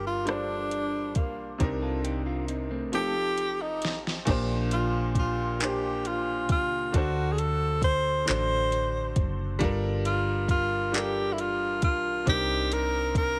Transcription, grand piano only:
0.00 0.25 G3 medium
0.00 0.26 D4 medium
0.00 0.27 F4 medium
0.00 0.29 A4 medium
0.00 1.62 A#4 medium
0.25 1.07 G3 medium
0.25 1.08 D4 medium
0.25 1.09 F4 medium
0.25 1.09 A4 medium
0.30 1.10 C5 medium
1.58 2.41 C3 medium
1.58 2.41 C4 medium
1.58 2.42 D4 medium
1.58 2.42 D#4 medium
1.63 2.43 A#4 medium
2.92 3.74 F3 medium
2.92 3.75 C4 medium
2.92 3.75 D#4 medium
2.92 3.76 G4 medium
2.97 3.77 A4 medium
4.25 5.07 A#2 loud
4.25 5.08 A#3 medium
4.25 5.09 D4 medium
4.25 5.09 G4 medium
4.30 5.10 C5 loud
5.59 6.41 A#2 medium
5.59 6.42 A#3 medium
5.59 6.42 D4 medium
5.59 6.43 G4 medium
5.64 6.43 C5 medium
6.92 7.74 D3 medium
6.92 7.75 D4 medium
6.92 7.75 F#4 medium
6.92 7.76 A4 medium
6.97 7.77 C5 medium
8.25 9.08 D3 medium
8.25 9.08 D4 medium
8.25 9.09 F#4 medium
8.25 9.09 A4 medium
8.30 9.10 C5 medium
9.59 10.41 G3 loud
9.59 10.42 D4 medium
9.59 10.42 F4 medium
9.59 10.43 A4 medium
9.64 10.43 A#4 loud
10.92 11.74 G3 medium
10.92 11.75 D4 medium
10.92 11.75 F4 medium
10.92 11.76 A4 medium
10.97 11.77 A#4 medium
12.25 13.07 C3 medium
12.25 13.08 C4 medium
12.25 13.09 D4 medium
12.25 13.09 D#4 medium
12.30 13.10 A#4 medium

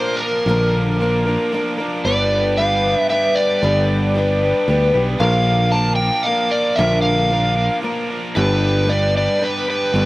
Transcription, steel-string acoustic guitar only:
0.00 0.47 F3 medium
0.00 0.47 A#3 medium
0.00 0.49 D4 medium
0.00 0.49 A#4 medium
0.48 1.00 A#2 medium
0.48 1.00 D3 medium
0.48 0.99 F3 medium
0.48 1.00 A#3 medium
0.48 1.02 D4 medium
0.48 1.01 A#4 medium
1.00 1.26 F3 medium
1.00 1.27 A#3 medium
1.00 1.26 D4 medium
1.00 1.24 A#4 medium
1.25 1.51 F3 soft
1.25 1.52 A#3 medium
1.25 1.53 D4 medium
1.25 1.52 A#4 medium
1.52 1.78 F3 medium
1.52 1.79 A#3 medium
1.52 1.79 D4 medium
1.52 1.77 A#4 medium
1.78 2.06 F3 soft
1.78 2.06 A#3 soft
1.78 2.05 D4 medium
1.78 2.05 A#4 medium
2.05 2.57 G2 medium
2.05 2.58 D3 medium
2.05 2.58 G3 medium
2.05 2.58 B3 medium
2.05 2.60 D4 medium
2.05 2.59 B4 medium
2.59 3.08 G3 medium
2.59 3.09 B3 medium
2.59 3.11 D4 medium
2.59 3.11 B4 medium
3.09 3.62 G3 medium
3.09 3.62 B3 medium
3.09 3.64 D4 medium
3.09 3.63 B4 medium
3.62 4.14 G2 medium
3.62 4.15 D3 medium
3.62 4.14 G3 medium
3.62 4.15 B3 medium
3.62 4.16 D4 medium
3.62 4.15 B4 medium
4.15 4.67 G3 medium
4.15 4.67 B3 medium
4.15 4.69 D4 medium
4.15 4.69 B4 medium
4.68 4.94 G3 medium
4.68 4.94 B3 medium
4.68 4.94 D4 medium
4.68 4.93 B4 medium
4.94 5.19 G3 soft
4.94 5.20 B3 soft
4.94 5.19 D4 medium
4.94 5.20 B4 medium
5.18 5.72 A#2 medium
5.18 5.72 D3 medium
5.18 5.72 F3 medium
5.18 5.72 A#3 medium
5.18 5.75 D4 medium
5.18 5.73 A#4 medium
5.73 6.24 F3 medium
5.73 6.25 A#3 medium
5.73 6.28 D4 medium
5.73 6.26 A#4 medium
6.25 6.77 F3 medium
6.25 6.78 A#3 medium
6.25 6.79 D4 medium
6.25 6.79 A#4 medium
6.78 7.30 A#2 medium
6.78 7.31 D3 medium
6.78 7.29 F3 medium
6.78 7.29 A#3 medium
6.78 7.31 D4 medium
6.78 7.32 A#4 medium
7.30 7.81 F3 medium
7.30 7.82 A#3 medium
7.30 7.84 D4 medium
7.30 7.83 A#4 medium
7.82 8.35 F3 medium
7.82 8.36 A#3 medium
7.82 8.36 D4 medium
7.82 8.37 A#4 medium
8.35 8.88 G2 medium
8.35 8.88 D3 medium
8.35 8.85 G3 medium
8.35 8.86 B3 medium
8.35 8.87 D4 medium
8.35 8.88 B4 medium
8.85 9.39 G3 medium
8.85 9.40 B3 medium
8.85 9.41 D4 medium
8.85 9.41 B4 medium
9.39 9.95 G3 medium
9.39 9.94 B3 medium
9.39 9.95 D4 medium
9.39 9.94 B4 medium
9.94 10.05 G2 medium
9.94 10.05 D3 medium
9.94 10.05 G3 medium
9.94 10.05 B3 medium
9.94 10.05 D4 medium
9.94 10.05 B4 medium

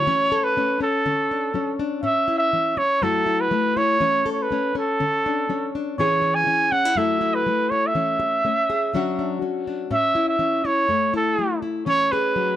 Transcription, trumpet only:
0.00 0.45 C#5 loud
0.44 0.80 B4 medium
0.82 1.76 A4 medium
2.03 2.38 E5 loud
2.38 2.79 E5 loud
2.78 3.04 C#5 loud
3.03 3.42 A4 loud
3.41 3.79 B4 loud
3.77 4.31 C#5 loud
4.33 4.44 C#5 medium
4.42 4.77 B4 medium
4.78 5.71 A4 medium
5.99 6.36 C#5 loud
6.35 6.73 G#5 loud
6.72 6.99 F#5 loud
6.97 7.36 E5 loud
7.35 7.72 B4 medium
7.70 7.88 C#5 medium
7.87 9.32 E5 medium
9.93 10.27 E5 loud
10.28 10.67 E5 loud
10.66 11.14 C#5 loud
11.17 11.61 A4 medium
11.87 12.13 C#5 loud
12.12 12.56 B4 loud

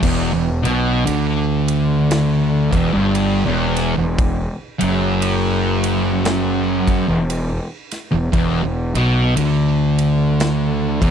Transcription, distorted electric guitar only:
0.02 0.31 E2 loud
0.33 0.64 E2 medium
0.63 1.05 B2 loud
1.06 2.70 D3 loud
2.71 2.92 E2 loud
2.93 3.44 G2 loud
3.45 3.95 E2 loud
3.96 4.37 E2 medium
4.79 7.07 F#2 loud
7.08 7.48 E2 medium
8.12 8.32 E2 medium
8.33 8.62 E2 loud
8.63 8.95 E2 medium
8.95 9.36 B2 loud
9.36 10.99 D3 loud
11.01 11.11 E2 loud

